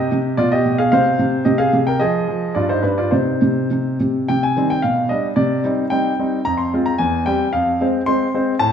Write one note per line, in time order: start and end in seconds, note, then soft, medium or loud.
0.00 0.10 C3 medium
0.00 0.35 G4 medium
0.00 0.17 D#5 medium
0.12 0.37 C3 soft
0.37 0.64 B2 medium
0.37 0.51 F4 medium
0.37 0.51 D5 medium
0.52 0.77 G4 medium
0.52 0.78 D#5 medium
0.66 0.91 B2 soft
0.78 0.91 G#4 soft
0.78 0.90 F5 medium
0.92 1.18 C3 soft
0.92 1.42 C5 medium
0.92 1.24 F5 medium
1.19 1.44 C3 soft
1.45 1.72 C3 soft
1.45 1.58 G4 soft
1.45 1.59 D#5 medium
1.58 1.84 G#4 medium
1.58 1.75 F5 medium
1.73 1.99 C3 soft
1.87 2.00 A#4 soft
1.87 2.00 G5 medium
2.00 2.26 F3 soft
2.00 2.52 G#4 soft
2.00 2.55 D#5 medium
2.28 2.55 F3 soft
2.55 2.82 G2 soft
2.55 2.69 F4 soft
2.55 2.69 D5 medium
2.69 2.83 D#4 soft
2.69 2.84 C5 medium
2.83 3.12 G2 soft
2.83 2.97 D4 soft
2.83 2.98 B4 medium
2.98 3.12 F4 soft
2.98 3.13 D5 medium
3.11 3.40 C3 soft
3.11 3.96 D#4 soft
3.11 3.99 C5 soft
3.42 3.69 C3 soft
3.71 3.99 C3 soft
4.00 4.28 C3 soft
4.29 4.56 C3 soft
4.29 4.42 G5 medium
4.43 4.70 G#5 medium
4.57 4.76 D#3 soft
4.57 4.76 G3 soft
4.57 4.77 C4 soft
4.70 4.84 G5 medium
4.82 5.10 B2 soft
4.82 5.10 F5 medium
5.09 5.30 G3 soft
5.09 5.30 D4 soft
5.09 5.26 D#5 medium
5.36 5.63 C3 medium
5.36 5.69 D5 medium
5.64 5.84 G3 soft
5.64 5.84 C4 soft
5.64 5.84 D#4 soft
5.90 6.11 G3 soft
5.90 6.11 C4 soft
5.90 6.12 D#4 soft
5.90 6.41 G5 medium
6.19 6.38 G3 soft
6.19 6.39 C4 soft
6.19 6.39 D#4 soft
6.45 6.72 F2 medium
6.45 6.59 A#5 medium
6.58 6.74 C6 medium
6.74 6.92 G#3 soft
6.74 6.93 C4 soft
6.74 6.93 F4 soft
6.86 6.99 A#5 medium
6.98 7.25 E2 medium
6.98 7.23 G#5 medium
7.26 7.46 G3 soft
7.26 7.46 C4 soft
7.26 7.46 G4 soft
7.26 7.50 G5 medium
7.53 7.79 F2 medium
7.53 7.85 F5 medium
7.81 8.00 G#3 soft
7.81 8.00 C4 soft
7.81 8.01 C5 soft
8.06 8.27 G#3 soft
8.06 8.27 C4 soft
8.06 8.27 C5 soft
8.06 8.57 C6 medium
8.34 8.54 G#3 soft
8.34 8.54 C4 soft
8.34 8.54 C5 soft
8.59 8.72 A2 medium
8.59 8.72 A5 medium